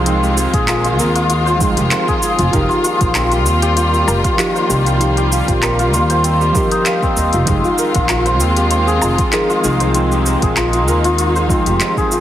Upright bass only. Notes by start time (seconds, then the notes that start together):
Already playing: C2
0.53 A#1
0.98 D#2
1.61 C2
1.77 F1
2.39 F1
2.54 F1
3.01 A#1
3.46 D#2
4.08 F1
4.70 C2
5.48 A#1
5.93 D#2
7.17 D#2
7.34 F1
7.48 F1
7.96 A#1
8.41 D#2
9.03 F1
9.64 C2
10.42 A#1
10.89 D#2
11.50 C2
11.67 F1